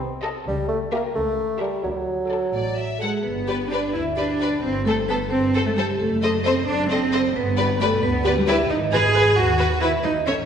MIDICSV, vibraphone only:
0, 0, Header, 1, 2, 480
1, 0, Start_track
1, 0, Key_signature, 1, "major"
1, 0, Tempo, 462250
1, 480, Time_signature, 6, 3, 24, 8
1, 5285, Tempo, 449438
1, 11014, End_track
2, 0, Start_track
2, 0, Title_t, "Vibraphone"
2, 0, Program_c, 0, 11
2, 3133, Note_on_c, 0, 68, 65
2, 3355, Note_on_c, 0, 71, 70
2, 3360, Note_off_c, 0, 68, 0
2, 3812, Note_off_c, 0, 71, 0
2, 3851, Note_on_c, 0, 74, 81
2, 4076, Note_off_c, 0, 74, 0
2, 4103, Note_on_c, 0, 76, 87
2, 4320, Note_off_c, 0, 76, 0
2, 4328, Note_on_c, 0, 74, 75
2, 4773, Note_off_c, 0, 74, 0
2, 4809, Note_on_c, 0, 72, 82
2, 5030, Note_off_c, 0, 72, 0
2, 5039, Note_on_c, 0, 69, 78
2, 5263, Note_off_c, 0, 69, 0
2, 5282, Note_on_c, 0, 71, 92
2, 5509, Note_off_c, 0, 71, 0
2, 5516, Note_on_c, 0, 72, 87
2, 5859, Note_off_c, 0, 72, 0
2, 5889, Note_on_c, 0, 69, 74
2, 6002, Note_off_c, 0, 69, 0
2, 6007, Note_on_c, 0, 67, 85
2, 6234, Note_off_c, 0, 67, 0
2, 6252, Note_on_c, 0, 69, 85
2, 6705, Note_off_c, 0, 69, 0
2, 6726, Note_on_c, 0, 72, 101
2, 6958, Note_off_c, 0, 72, 0
2, 6984, Note_on_c, 0, 74, 111
2, 7207, Note_off_c, 0, 74, 0
2, 7227, Note_on_c, 0, 72, 85
2, 7672, Note_off_c, 0, 72, 0
2, 7712, Note_on_c, 0, 71, 99
2, 8156, Note_off_c, 0, 71, 0
2, 8192, Note_on_c, 0, 69, 105
2, 8412, Note_off_c, 0, 69, 0
2, 8424, Note_on_c, 0, 71, 106
2, 8758, Note_off_c, 0, 71, 0
2, 8798, Note_on_c, 0, 67, 85
2, 8902, Note_off_c, 0, 67, 0
2, 8913, Note_on_c, 0, 76, 106
2, 9128, Note_off_c, 0, 76, 0
2, 9151, Note_on_c, 0, 75, 98
2, 9367, Note_off_c, 0, 75, 0
2, 9379, Note_on_c, 0, 80, 96
2, 9822, Note_off_c, 0, 80, 0
2, 9846, Note_on_c, 0, 78, 102
2, 10293, Note_off_c, 0, 78, 0
2, 10321, Note_on_c, 0, 76, 110
2, 10547, Note_off_c, 0, 76, 0
2, 10560, Note_on_c, 0, 75, 97
2, 10785, Note_off_c, 0, 75, 0
2, 10805, Note_on_c, 0, 73, 89
2, 11014, Note_off_c, 0, 73, 0
2, 11014, End_track
0, 0, End_of_file